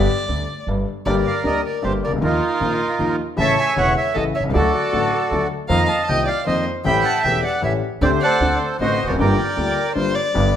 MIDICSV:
0, 0, Header, 1, 5, 480
1, 0, Start_track
1, 0, Key_signature, -2, "minor"
1, 0, Tempo, 386847
1, 1312, Time_signature, 3, 2, 24, 8
1, 13108, End_track
2, 0, Start_track
2, 0, Title_t, "Bandoneon"
2, 0, Program_c, 0, 23
2, 1329, Note_on_c, 0, 79, 58
2, 1342, Note_on_c, 0, 70, 53
2, 1342, Note_on_c, 0, 74, 54
2, 1434, Note_off_c, 0, 79, 0
2, 1573, Note_on_c, 0, 77, 58
2, 1788, Note_off_c, 0, 77, 0
2, 1815, Note_on_c, 0, 75, 67
2, 2000, Note_off_c, 0, 70, 0
2, 2000, Note_off_c, 0, 74, 0
2, 2029, Note_off_c, 0, 75, 0
2, 2058, Note_on_c, 0, 74, 52
2, 2286, Note_on_c, 0, 72, 64
2, 2293, Note_off_c, 0, 74, 0
2, 2392, Note_off_c, 0, 72, 0
2, 2530, Note_on_c, 0, 74, 64
2, 2635, Note_off_c, 0, 74, 0
2, 2778, Note_on_c, 0, 70, 69
2, 2789, Note_on_c, 0, 65, 48
2, 2792, Note_on_c, 0, 63, 46
2, 3917, Note_off_c, 0, 70, 0
2, 3923, Note_off_c, 0, 65, 0
2, 3924, Note_off_c, 0, 63, 0
2, 4209, Note_on_c, 0, 81, 79
2, 4226, Note_on_c, 0, 76, 57
2, 4228, Note_on_c, 0, 73, 56
2, 4449, Note_off_c, 0, 81, 0
2, 4450, Note_on_c, 0, 80, 68
2, 4689, Note_on_c, 0, 78, 70
2, 4690, Note_off_c, 0, 80, 0
2, 4882, Note_off_c, 0, 73, 0
2, 4882, Note_off_c, 0, 76, 0
2, 4906, Note_off_c, 0, 78, 0
2, 4928, Note_on_c, 0, 76, 72
2, 5159, Note_on_c, 0, 75, 70
2, 5169, Note_off_c, 0, 76, 0
2, 5266, Note_off_c, 0, 75, 0
2, 5395, Note_on_c, 0, 76, 65
2, 5502, Note_off_c, 0, 76, 0
2, 5625, Note_on_c, 0, 74, 66
2, 5657, Note_on_c, 0, 69, 59
2, 5663, Note_on_c, 0, 66, 52
2, 6782, Note_off_c, 0, 74, 0
2, 6798, Note_off_c, 0, 69, 0
2, 6801, Note_off_c, 0, 66, 0
2, 7058, Note_on_c, 0, 82, 76
2, 7082, Note_on_c, 0, 75, 58
2, 7290, Note_off_c, 0, 82, 0
2, 7297, Note_on_c, 0, 81, 72
2, 7553, Note_on_c, 0, 79, 75
2, 7555, Note_off_c, 0, 81, 0
2, 7751, Note_off_c, 0, 75, 0
2, 7786, Note_on_c, 0, 77, 73
2, 7803, Note_off_c, 0, 79, 0
2, 8014, Note_off_c, 0, 77, 0
2, 8025, Note_on_c, 0, 75, 70
2, 8253, Note_off_c, 0, 75, 0
2, 8512, Note_on_c, 0, 83, 85
2, 8531, Note_on_c, 0, 76, 66
2, 8536, Note_on_c, 0, 79, 63
2, 8737, Note_off_c, 0, 83, 0
2, 8749, Note_on_c, 0, 81, 78
2, 8962, Note_off_c, 0, 79, 0
2, 8975, Note_off_c, 0, 81, 0
2, 8981, Note_on_c, 0, 79, 82
2, 9192, Note_off_c, 0, 76, 0
2, 9227, Note_on_c, 0, 78, 65
2, 9234, Note_off_c, 0, 79, 0
2, 9453, Note_off_c, 0, 78, 0
2, 9486, Note_on_c, 0, 76, 70
2, 9591, Note_off_c, 0, 76, 0
2, 9956, Note_on_c, 0, 79, 74
2, 9981, Note_on_c, 0, 72, 60
2, 10063, Note_off_c, 0, 79, 0
2, 10208, Note_on_c, 0, 78, 70
2, 10212, Note_off_c, 0, 72, 0
2, 10226, Note_on_c, 0, 69, 60
2, 10231, Note_on_c, 0, 72, 55
2, 10646, Note_off_c, 0, 78, 0
2, 10879, Note_off_c, 0, 69, 0
2, 10881, Note_off_c, 0, 72, 0
2, 10928, Note_on_c, 0, 75, 70
2, 10941, Note_on_c, 0, 72, 54
2, 10948, Note_on_c, 0, 66, 50
2, 11254, Note_off_c, 0, 75, 0
2, 11266, Note_on_c, 0, 74, 63
2, 11321, Note_off_c, 0, 74, 0
2, 11372, Note_off_c, 0, 72, 0
2, 11376, Note_off_c, 0, 66, 0
2, 11410, Note_on_c, 0, 79, 74
2, 11420, Note_on_c, 0, 70, 55
2, 11426, Note_on_c, 0, 74, 55
2, 12310, Note_off_c, 0, 79, 0
2, 12315, Note_off_c, 0, 70, 0
2, 12318, Note_off_c, 0, 74, 0
2, 13108, End_track
3, 0, Start_track
3, 0, Title_t, "Violin"
3, 0, Program_c, 1, 40
3, 0, Note_on_c, 1, 74, 75
3, 784, Note_off_c, 1, 74, 0
3, 1310, Note_on_c, 1, 74, 63
3, 1419, Note_off_c, 1, 74, 0
3, 1560, Note_on_c, 1, 74, 47
3, 1781, Note_off_c, 1, 74, 0
3, 1793, Note_on_c, 1, 70, 48
3, 2017, Note_off_c, 1, 70, 0
3, 2040, Note_on_c, 1, 70, 54
3, 2261, Note_off_c, 1, 70, 0
3, 2282, Note_on_c, 1, 67, 57
3, 2389, Note_off_c, 1, 67, 0
3, 2543, Note_on_c, 1, 70, 57
3, 2645, Note_off_c, 1, 70, 0
3, 2772, Note_on_c, 1, 65, 54
3, 3915, Note_off_c, 1, 65, 0
3, 4197, Note_on_c, 1, 76, 70
3, 4420, Note_off_c, 1, 76, 0
3, 4426, Note_on_c, 1, 76, 60
3, 4654, Note_off_c, 1, 76, 0
3, 4680, Note_on_c, 1, 73, 53
3, 4901, Note_off_c, 1, 73, 0
3, 4925, Note_on_c, 1, 73, 62
3, 5132, Note_off_c, 1, 73, 0
3, 5140, Note_on_c, 1, 69, 59
3, 5251, Note_off_c, 1, 69, 0
3, 5395, Note_on_c, 1, 73, 59
3, 5503, Note_off_c, 1, 73, 0
3, 5609, Note_on_c, 1, 69, 65
3, 6774, Note_off_c, 1, 69, 0
3, 7052, Note_on_c, 1, 77, 70
3, 7262, Note_off_c, 1, 77, 0
3, 7269, Note_on_c, 1, 77, 58
3, 7504, Note_off_c, 1, 77, 0
3, 7511, Note_on_c, 1, 75, 66
3, 7756, Note_off_c, 1, 75, 0
3, 7761, Note_on_c, 1, 74, 66
3, 8001, Note_off_c, 1, 74, 0
3, 8021, Note_on_c, 1, 72, 65
3, 8251, Note_off_c, 1, 72, 0
3, 8497, Note_on_c, 1, 79, 66
3, 8710, Note_off_c, 1, 79, 0
3, 8718, Note_on_c, 1, 78, 63
3, 8958, Note_off_c, 1, 78, 0
3, 8979, Note_on_c, 1, 76, 58
3, 9209, Note_off_c, 1, 76, 0
3, 9228, Note_on_c, 1, 74, 64
3, 9453, Note_off_c, 1, 74, 0
3, 9468, Note_on_c, 1, 73, 63
3, 9576, Note_off_c, 1, 73, 0
3, 9946, Note_on_c, 1, 74, 64
3, 10055, Note_off_c, 1, 74, 0
3, 10181, Note_on_c, 1, 74, 68
3, 10631, Note_off_c, 1, 74, 0
3, 10913, Note_on_c, 1, 72, 69
3, 11246, Note_off_c, 1, 72, 0
3, 11282, Note_on_c, 1, 70, 53
3, 11333, Note_off_c, 1, 70, 0
3, 11412, Note_on_c, 1, 74, 60
3, 12311, Note_off_c, 1, 74, 0
3, 12349, Note_on_c, 1, 72, 77
3, 12592, Note_on_c, 1, 74, 75
3, 12611, Note_off_c, 1, 72, 0
3, 13108, Note_off_c, 1, 74, 0
3, 13108, End_track
4, 0, Start_track
4, 0, Title_t, "Grand piano"
4, 0, Program_c, 2, 0
4, 357, Note_on_c, 2, 50, 40
4, 363, Note_on_c, 2, 38, 40
4, 555, Note_off_c, 2, 50, 0
4, 558, Note_off_c, 2, 38, 0
4, 848, Note_on_c, 2, 43, 54
4, 849, Note_on_c, 2, 31, 52
4, 1041, Note_off_c, 2, 43, 0
4, 1042, Note_off_c, 2, 31, 0
4, 1314, Note_on_c, 2, 55, 53
4, 1317, Note_on_c, 2, 31, 64
4, 1317, Note_on_c, 2, 50, 57
4, 1319, Note_on_c, 2, 58, 44
4, 1319, Note_on_c, 2, 67, 57
4, 1321, Note_on_c, 2, 43, 66
4, 1515, Note_off_c, 2, 55, 0
4, 1517, Note_off_c, 2, 31, 0
4, 1517, Note_off_c, 2, 50, 0
4, 1518, Note_off_c, 2, 58, 0
4, 1518, Note_off_c, 2, 67, 0
4, 1519, Note_off_c, 2, 43, 0
4, 1779, Note_on_c, 2, 38, 40
4, 1787, Note_on_c, 2, 50, 40
4, 1788, Note_on_c, 2, 55, 30
4, 1788, Note_on_c, 2, 58, 30
4, 1790, Note_on_c, 2, 67, 36
4, 1988, Note_off_c, 2, 38, 0
4, 1993, Note_off_c, 2, 50, 0
4, 1993, Note_off_c, 2, 55, 0
4, 1993, Note_off_c, 2, 58, 0
4, 1994, Note_off_c, 2, 67, 0
4, 2262, Note_on_c, 2, 31, 46
4, 2263, Note_on_c, 2, 55, 37
4, 2264, Note_on_c, 2, 43, 50
4, 2264, Note_on_c, 2, 50, 43
4, 2270, Note_on_c, 2, 67, 43
4, 2273, Note_on_c, 2, 58, 37
4, 2470, Note_off_c, 2, 31, 0
4, 2471, Note_off_c, 2, 50, 0
4, 2471, Note_off_c, 2, 55, 0
4, 2472, Note_off_c, 2, 43, 0
4, 2474, Note_off_c, 2, 67, 0
4, 2476, Note_off_c, 2, 58, 0
4, 2564, Note_on_c, 2, 36, 41
4, 2626, Note_on_c, 2, 37, 52
4, 2630, Note_off_c, 2, 36, 0
4, 2679, Note_on_c, 2, 38, 52
4, 2691, Note_off_c, 2, 37, 0
4, 2745, Note_on_c, 2, 39, 60
4, 2745, Note_on_c, 2, 51, 57
4, 2746, Note_on_c, 2, 58, 46
4, 2748, Note_off_c, 2, 38, 0
4, 2748, Note_on_c, 2, 53, 45
4, 2749, Note_on_c, 2, 65, 53
4, 2952, Note_off_c, 2, 39, 0
4, 2953, Note_off_c, 2, 58, 0
4, 2954, Note_off_c, 2, 51, 0
4, 2954, Note_off_c, 2, 53, 0
4, 2954, Note_off_c, 2, 65, 0
4, 3229, Note_on_c, 2, 46, 38
4, 3232, Note_on_c, 2, 51, 36
4, 3235, Note_on_c, 2, 53, 29
4, 3236, Note_on_c, 2, 58, 32
4, 3237, Note_on_c, 2, 65, 35
4, 3239, Note_on_c, 2, 34, 42
4, 3434, Note_off_c, 2, 46, 0
4, 3436, Note_off_c, 2, 51, 0
4, 3437, Note_off_c, 2, 53, 0
4, 3438, Note_off_c, 2, 58, 0
4, 3438, Note_off_c, 2, 65, 0
4, 3439, Note_off_c, 2, 34, 0
4, 3707, Note_on_c, 2, 51, 44
4, 3708, Note_on_c, 2, 53, 35
4, 3710, Note_on_c, 2, 58, 40
4, 3714, Note_on_c, 2, 65, 42
4, 3715, Note_on_c, 2, 39, 48
4, 3914, Note_off_c, 2, 51, 0
4, 3914, Note_off_c, 2, 53, 0
4, 3915, Note_off_c, 2, 58, 0
4, 3917, Note_off_c, 2, 39, 0
4, 3917, Note_off_c, 2, 65, 0
4, 4177, Note_on_c, 2, 49, 53
4, 4178, Note_on_c, 2, 33, 56
4, 4182, Note_on_c, 2, 57, 50
4, 4183, Note_on_c, 2, 52, 50
4, 4183, Note_on_c, 2, 64, 57
4, 4186, Note_on_c, 2, 45, 65
4, 4388, Note_off_c, 2, 49, 0
4, 4389, Note_off_c, 2, 33, 0
4, 4390, Note_off_c, 2, 57, 0
4, 4391, Note_off_c, 2, 52, 0
4, 4391, Note_off_c, 2, 64, 0
4, 4392, Note_off_c, 2, 45, 0
4, 4668, Note_on_c, 2, 49, 31
4, 4671, Note_on_c, 2, 28, 42
4, 4675, Note_on_c, 2, 52, 34
4, 4675, Note_on_c, 2, 57, 31
4, 4677, Note_on_c, 2, 64, 42
4, 4678, Note_on_c, 2, 40, 46
4, 4873, Note_off_c, 2, 49, 0
4, 4875, Note_off_c, 2, 28, 0
4, 4877, Note_off_c, 2, 52, 0
4, 4877, Note_off_c, 2, 57, 0
4, 4878, Note_off_c, 2, 64, 0
4, 4879, Note_off_c, 2, 40, 0
4, 5152, Note_on_c, 2, 33, 45
4, 5152, Note_on_c, 2, 45, 45
4, 5154, Note_on_c, 2, 64, 42
4, 5156, Note_on_c, 2, 49, 41
4, 5156, Note_on_c, 2, 52, 35
4, 5158, Note_on_c, 2, 57, 40
4, 5355, Note_off_c, 2, 33, 0
4, 5355, Note_off_c, 2, 45, 0
4, 5356, Note_off_c, 2, 64, 0
4, 5357, Note_off_c, 2, 49, 0
4, 5357, Note_off_c, 2, 52, 0
4, 5358, Note_off_c, 2, 57, 0
4, 5455, Note_on_c, 2, 35, 40
4, 5507, Note_on_c, 2, 36, 52
4, 5515, Note_off_c, 2, 35, 0
4, 5571, Note_off_c, 2, 36, 0
4, 5573, Note_on_c, 2, 37, 60
4, 5629, Note_on_c, 2, 50, 61
4, 5629, Note_on_c, 2, 54, 48
4, 5631, Note_on_c, 2, 38, 64
4, 5634, Note_off_c, 2, 37, 0
4, 5635, Note_on_c, 2, 57, 52
4, 5641, Note_on_c, 2, 66, 61
4, 5834, Note_off_c, 2, 38, 0
4, 5834, Note_off_c, 2, 54, 0
4, 5836, Note_off_c, 2, 57, 0
4, 5837, Note_off_c, 2, 50, 0
4, 5839, Note_off_c, 2, 66, 0
4, 6110, Note_on_c, 2, 54, 30
4, 6110, Note_on_c, 2, 66, 37
4, 6111, Note_on_c, 2, 33, 41
4, 6112, Note_on_c, 2, 50, 34
4, 6112, Note_on_c, 2, 57, 28
4, 6115, Note_on_c, 2, 45, 39
4, 6314, Note_off_c, 2, 54, 0
4, 6314, Note_off_c, 2, 66, 0
4, 6315, Note_off_c, 2, 33, 0
4, 6315, Note_off_c, 2, 50, 0
4, 6315, Note_off_c, 2, 57, 0
4, 6317, Note_off_c, 2, 45, 0
4, 6602, Note_on_c, 2, 50, 48
4, 6604, Note_on_c, 2, 38, 48
4, 6604, Note_on_c, 2, 54, 37
4, 6605, Note_on_c, 2, 57, 34
4, 6610, Note_on_c, 2, 66, 45
4, 6802, Note_off_c, 2, 38, 0
4, 6802, Note_off_c, 2, 50, 0
4, 6802, Note_off_c, 2, 54, 0
4, 6802, Note_off_c, 2, 57, 0
4, 6805, Note_off_c, 2, 66, 0
4, 7060, Note_on_c, 2, 41, 57
4, 7061, Note_on_c, 2, 58, 44
4, 7063, Note_on_c, 2, 51, 49
4, 7063, Note_on_c, 2, 60, 47
4, 7064, Note_on_c, 2, 53, 60
4, 7068, Note_on_c, 2, 65, 52
4, 7271, Note_off_c, 2, 41, 0
4, 7271, Note_off_c, 2, 58, 0
4, 7272, Note_off_c, 2, 51, 0
4, 7272, Note_off_c, 2, 53, 0
4, 7272, Note_off_c, 2, 60, 0
4, 7275, Note_off_c, 2, 65, 0
4, 7552, Note_on_c, 2, 48, 37
4, 7554, Note_on_c, 2, 51, 36
4, 7556, Note_on_c, 2, 36, 38
4, 7557, Note_on_c, 2, 58, 30
4, 7561, Note_on_c, 2, 65, 38
4, 7566, Note_on_c, 2, 60, 33
4, 7756, Note_off_c, 2, 48, 0
4, 7758, Note_off_c, 2, 51, 0
4, 7759, Note_off_c, 2, 36, 0
4, 7759, Note_off_c, 2, 58, 0
4, 7761, Note_off_c, 2, 65, 0
4, 7764, Note_off_c, 2, 60, 0
4, 8015, Note_on_c, 2, 51, 36
4, 8020, Note_on_c, 2, 41, 49
4, 8021, Note_on_c, 2, 60, 36
4, 8023, Note_on_c, 2, 58, 38
4, 8024, Note_on_c, 2, 53, 46
4, 8024, Note_on_c, 2, 65, 44
4, 8227, Note_off_c, 2, 51, 0
4, 8230, Note_off_c, 2, 41, 0
4, 8230, Note_off_c, 2, 60, 0
4, 8231, Note_off_c, 2, 58, 0
4, 8232, Note_off_c, 2, 53, 0
4, 8232, Note_off_c, 2, 65, 0
4, 8493, Note_on_c, 2, 52, 51
4, 8494, Note_on_c, 2, 57, 48
4, 8499, Note_on_c, 2, 61, 52
4, 8499, Note_on_c, 2, 67, 62
4, 8501, Note_on_c, 2, 33, 62
4, 8505, Note_on_c, 2, 45, 60
4, 8706, Note_off_c, 2, 52, 0
4, 8706, Note_off_c, 2, 57, 0
4, 8709, Note_off_c, 2, 61, 0
4, 8709, Note_off_c, 2, 67, 0
4, 8710, Note_off_c, 2, 33, 0
4, 8712, Note_off_c, 2, 45, 0
4, 8997, Note_on_c, 2, 52, 33
4, 8998, Note_on_c, 2, 40, 44
4, 8999, Note_on_c, 2, 57, 34
4, 9004, Note_on_c, 2, 67, 37
4, 9006, Note_on_c, 2, 28, 43
4, 9006, Note_on_c, 2, 61, 33
4, 9197, Note_off_c, 2, 40, 0
4, 9197, Note_off_c, 2, 52, 0
4, 9198, Note_off_c, 2, 57, 0
4, 9200, Note_off_c, 2, 67, 0
4, 9202, Note_off_c, 2, 28, 0
4, 9202, Note_off_c, 2, 61, 0
4, 9450, Note_on_c, 2, 33, 50
4, 9454, Note_on_c, 2, 52, 41
4, 9455, Note_on_c, 2, 45, 43
4, 9455, Note_on_c, 2, 57, 37
4, 9460, Note_on_c, 2, 67, 43
4, 9461, Note_on_c, 2, 61, 36
4, 9662, Note_off_c, 2, 33, 0
4, 9664, Note_off_c, 2, 52, 0
4, 9665, Note_off_c, 2, 45, 0
4, 9665, Note_off_c, 2, 57, 0
4, 9667, Note_off_c, 2, 67, 0
4, 9668, Note_off_c, 2, 61, 0
4, 9944, Note_on_c, 2, 50, 71
4, 9948, Note_on_c, 2, 38, 64
4, 9953, Note_on_c, 2, 60, 48
4, 9954, Note_on_c, 2, 57, 54
4, 9961, Note_on_c, 2, 67, 63
4, 10151, Note_off_c, 2, 38, 0
4, 10152, Note_off_c, 2, 50, 0
4, 10154, Note_off_c, 2, 57, 0
4, 10154, Note_off_c, 2, 60, 0
4, 10158, Note_off_c, 2, 67, 0
4, 10436, Note_on_c, 2, 50, 45
4, 10436, Note_on_c, 2, 57, 33
4, 10440, Note_on_c, 2, 38, 44
4, 10441, Note_on_c, 2, 60, 33
4, 10441, Note_on_c, 2, 66, 41
4, 10635, Note_off_c, 2, 57, 0
4, 10636, Note_off_c, 2, 50, 0
4, 10637, Note_off_c, 2, 38, 0
4, 10637, Note_off_c, 2, 60, 0
4, 10637, Note_off_c, 2, 66, 0
4, 10928, Note_on_c, 2, 33, 51
4, 10929, Note_on_c, 2, 57, 36
4, 10930, Note_on_c, 2, 50, 43
4, 10931, Note_on_c, 2, 60, 42
4, 10932, Note_on_c, 2, 45, 48
4, 10933, Note_on_c, 2, 66, 46
4, 11121, Note_off_c, 2, 33, 0
4, 11121, Note_off_c, 2, 57, 0
4, 11122, Note_off_c, 2, 45, 0
4, 11122, Note_off_c, 2, 50, 0
4, 11122, Note_off_c, 2, 60, 0
4, 11123, Note_off_c, 2, 66, 0
4, 11208, Note_on_c, 2, 40, 41
4, 11269, Note_off_c, 2, 40, 0
4, 11284, Note_on_c, 2, 41, 57
4, 11337, Note_off_c, 2, 41, 0
4, 11348, Note_on_c, 2, 42, 59
4, 11398, Note_off_c, 2, 42, 0
4, 11407, Note_on_c, 2, 43, 62
4, 11409, Note_on_c, 2, 50, 55
4, 11412, Note_on_c, 2, 58, 51
4, 11413, Note_on_c, 2, 55, 51
4, 11414, Note_on_c, 2, 31, 57
4, 11416, Note_on_c, 2, 65, 54
4, 11600, Note_off_c, 2, 43, 0
4, 11600, Note_off_c, 2, 50, 0
4, 11602, Note_off_c, 2, 58, 0
4, 11603, Note_off_c, 2, 31, 0
4, 11603, Note_off_c, 2, 55, 0
4, 11604, Note_off_c, 2, 65, 0
4, 11873, Note_on_c, 2, 50, 38
4, 11875, Note_on_c, 2, 38, 43
4, 11876, Note_on_c, 2, 55, 32
4, 11876, Note_on_c, 2, 58, 33
4, 11881, Note_on_c, 2, 65, 39
4, 12073, Note_off_c, 2, 50, 0
4, 12074, Note_off_c, 2, 38, 0
4, 12074, Note_off_c, 2, 55, 0
4, 12074, Note_off_c, 2, 58, 0
4, 12077, Note_off_c, 2, 65, 0
4, 12349, Note_on_c, 2, 50, 38
4, 12350, Note_on_c, 2, 31, 51
4, 12350, Note_on_c, 2, 55, 36
4, 12351, Note_on_c, 2, 43, 45
4, 12352, Note_on_c, 2, 58, 36
4, 12357, Note_on_c, 2, 65, 43
4, 12551, Note_off_c, 2, 31, 0
4, 12551, Note_off_c, 2, 50, 0
4, 12552, Note_off_c, 2, 43, 0
4, 12552, Note_off_c, 2, 55, 0
4, 12553, Note_off_c, 2, 58, 0
4, 12555, Note_off_c, 2, 65, 0
4, 12831, Note_on_c, 2, 55, 54
4, 12836, Note_on_c, 2, 50, 58
4, 12841, Note_on_c, 2, 59, 53
4, 12841, Note_on_c, 2, 67, 57
4, 12842, Note_on_c, 2, 31, 71
4, 12842, Note_on_c, 2, 43, 68
4, 13032, Note_off_c, 2, 55, 0
4, 13035, Note_off_c, 2, 50, 0
4, 13037, Note_off_c, 2, 43, 0
4, 13037, Note_off_c, 2, 59, 0
4, 13037, Note_off_c, 2, 67, 0
4, 13038, Note_off_c, 2, 31, 0
4, 13108, End_track
5, 0, Start_track
5, 0, Title_t, "Upright bass"
5, 0, Program_c, 3, 32
5, 357, Note_on_c, 3, 38, 57
5, 555, Note_off_c, 3, 38, 0
5, 830, Note_on_c, 3, 31, 53
5, 1032, Note_off_c, 3, 31, 0
5, 1314, Note_on_c, 3, 31, 69
5, 1516, Note_off_c, 3, 31, 0
5, 1793, Note_on_c, 3, 38, 49
5, 1996, Note_off_c, 3, 38, 0
5, 2286, Note_on_c, 3, 31, 46
5, 2483, Note_off_c, 3, 31, 0
5, 2596, Note_on_c, 3, 36, 39
5, 2634, Note_off_c, 3, 36, 0
5, 2641, Note_on_c, 3, 37, 44
5, 2698, Note_off_c, 3, 37, 0
5, 2705, Note_on_c, 3, 38, 56
5, 2746, Note_off_c, 3, 38, 0
5, 2754, Note_on_c, 3, 39, 73
5, 2957, Note_off_c, 3, 39, 0
5, 3234, Note_on_c, 3, 34, 51
5, 3437, Note_off_c, 3, 34, 0
5, 3718, Note_on_c, 3, 39, 47
5, 3918, Note_off_c, 3, 39, 0
5, 4198, Note_on_c, 3, 33, 74
5, 4399, Note_off_c, 3, 33, 0
5, 4674, Note_on_c, 3, 28, 52
5, 4877, Note_off_c, 3, 28, 0
5, 5169, Note_on_c, 3, 33, 50
5, 5363, Note_off_c, 3, 33, 0
5, 5467, Note_on_c, 3, 35, 43
5, 5513, Note_off_c, 3, 35, 0
5, 5520, Note_on_c, 3, 36, 48
5, 5573, Note_off_c, 3, 36, 0
5, 5581, Note_on_c, 3, 37, 53
5, 5638, Note_off_c, 3, 37, 0
5, 5643, Note_on_c, 3, 38, 76
5, 5840, Note_off_c, 3, 38, 0
5, 6128, Note_on_c, 3, 33, 45
5, 6323, Note_off_c, 3, 33, 0
5, 6592, Note_on_c, 3, 38, 53
5, 6796, Note_off_c, 3, 38, 0
5, 7067, Note_on_c, 3, 41, 78
5, 7274, Note_off_c, 3, 41, 0
5, 7561, Note_on_c, 3, 36, 48
5, 7761, Note_off_c, 3, 36, 0
5, 8038, Note_on_c, 3, 41, 47
5, 8239, Note_off_c, 3, 41, 0
5, 8519, Note_on_c, 3, 33, 70
5, 8719, Note_off_c, 3, 33, 0
5, 8987, Note_on_c, 3, 28, 54
5, 9192, Note_off_c, 3, 28, 0
5, 9475, Note_on_c, 3, 33, 46
5, 9675, Note_off_c, 3, 33, 0
5, 9941, Note_on_c, 3, 38, 80
5, 10147, Note_off_c, 3, 38, 0
5, 10425, Note_on_c, 3, 38, 55
5, 10629, Note_off_c, 3, 38, 0
5, 10911, Note_on_c, 3, 33, 47
5, 11112, Note_off_c, 3, 33, 0
5, 11215, Note_on_c, 3, 28, 42
5, 11273, Note_off_c, 3, 28, 0
5, 11289, Note_on_c, 3, 29, 54
5, 11333, Note_off_c, 3, 29, 0
5, 11341, Note_on_c, 3, 30, 62
5, 11395, Note_off_c, 3, 30, 0
5, 11406, Note_on_c, 3, 31, 73
5, 11599, Note_off_c, 3, 31, 0
5, 11877, Note_on_c, 3, 38, 50
5, 12074, Note_off_c, 3, 38, 0
5, 12358, Note_on_c, 3, 31, 51
5, 12556, Note_off_c, 3, 31, 0
5, 12849, Note_on_c, 3, 31, 75
5, 13041, Note_off_c, 3, 31, 0
5, 13108, End_track
0, 0, End_of_file